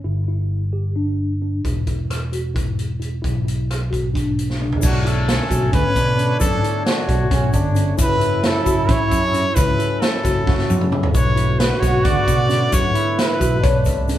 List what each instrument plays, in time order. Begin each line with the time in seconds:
0.04 fingered electric bass G1, tine electric piano E4
0.28 tine electric piano E4
0.73 tine electric piano G4
0.96 tine electric piano D4
1.42 tine electric piano D4
1.65 fingered electric bass E1, tine electric piano E4, kick, closed hi-hat
1.87 tine electric piano E4, kick, closed hi-hat
2.11 cross-stick, closed hi-hat
2.33 tine electric piano F#4, closed hi-hat
2.55 tine electric piano E4, kick, closed hi-hat
2.79 closed hi-hat
3.00 tine electric piano E4, closed hi-hat
3.22 fingered electric bass B1, tine electric piano E4, kick, closed hi-hat
3.45 tine electric piano E4, closed hi-hat
3.71 cross-stick, closed hi-hat
3.90 tine electric piano F#4, kick, closed hi-hat
4.14 tine electric piano D4, kick, closed hi-hat
4.39 closed hi-hat
4.50 snare
4.60 tine electric piano D4, mid tom
4.72 floor tom
4.82 fingered electric bass B1, tonewheel organ B2 D3 A3 C#5, trombone D4, tine electric piano E4, trumpet F#4, kick, crash, shaker
5.05 tine electric piano E4, trumpet A4, closed hi-hat
5.28 trombone C#4, snare, closed hi-hat
5.50 fingered electric bass B1, tine electric piano F#4, kick, closed hi-hat, shaker
5.72 fingered electric bass D2, tine electric piano C#4, trumpet B4, kick, closed hi-hat
5.96 fingered electric bass B2, trombone D4, kick, snare, closed hi-hat, shaker
6.17 tine electric piano C#4, closed hi-hat, shaker
6.40 fingered electric bass F#2, tine electric piano E4, trumpet A4, kick, closed hi-hat, shaker
6.63 tine electric piano E4, closed hi-hat
6.86 trumpet F#4, snare, closed hi-hat
7.08 fingered electric bass B1, tine electric piano F#4, kick, closed hi-hat
7.31 fingered electric bass B1, tine electric piano C#4, trombone C#4, kick, closed hi-hat
7.53 fingered electric bass G1, trombone D4, kick, closed hi-hat, shaker
7.75 tine electric piano C#4, closed hi-hat, shaker
7.97 fingered electric bass F#1, tonewheel organ F#3 C#4 E4 A4, tine electric piano E4, trombone E4, kick, closed hi-hat, shaker
8.01 trumpet B4
8.20 tine electric piano E4, closed hi-hat
8.43 trumpet A4, snare, closed hi-hat
8.65 fingered electric bass F#1, tine electric piano F#4, kick, closed hi-hat, shaker
8.88 fingered electric bass A1, tine electric piano C#4, trumpet C#5, kick, closed hi-hat
9.11 fingered electric bass F#2, kick, closed hi-hat, shaker
9.34 tine electric piano C#4, closed hi-hat, shaker
9.55 fingered electric bass C#2, tine electric piano E4, trumpet B4, kick, closed hi-hat, shaker
9.79 tine electric piano E4, closed hi-hat, shaker
10.01 trumpet A4, snare, closed hi-hat
10.24 fingered electric bass F#1, tine electric piano F#4, kick, snare, closed hi-hat, shaker
10.46 fingered electric bass F#1, tine electric piano C#4, trombone F#4, kick, snare
10.58 snare
10.70 fingered electric bass F#2, high tom, shaker
10.81 mid tom
10.92 tine electric piano C#4, mid tom
11.03 floor tom
11.14 fingered electric bass B1, tonewheel organ B2 D3 A3 B4, tine electric piano E4, trombone F#4, trumpet C#5, kick, closed hi-hat, shaker
11.36 tine electric piano E4, closed hi-hat
11.59 trumpet B4, snare, closed hi-hat
11.80 fingered electric bass B1, tine electric piano F#4, trumpet C#5, kick, snare, closed hi-hat, shaker
12.05 fingered electric bass D2, tine electric piano C#3, trumpet D5, kick, closed hi-hat
12.28 fingered electric bass B2, kick, closed hi-hat, shaker
12.49 tine electric piano C#4, snare, closed hi-hat, shaker
12.72 fingered electric bass F#2, tine electric piano E4, trumpet C#5, kick, closed hi-hat, shaker
12.94 trombone E4, tine electric piano E4, closed hi-hat
13.19 trumpet B4, snare, closed hi-hat
13.40 fingered electric bass B1, tine electric piano F#4, kick, closed hi-hat, shaker
13.62 fingered electric bass B1, trombone D4, tine electric piano C#5, kick, closed hi-hat
13.85 fingered electric bass C2, kick, closed hi-hat, shaker
14.08 tine electric piano C#4, closed hi-hat, shaker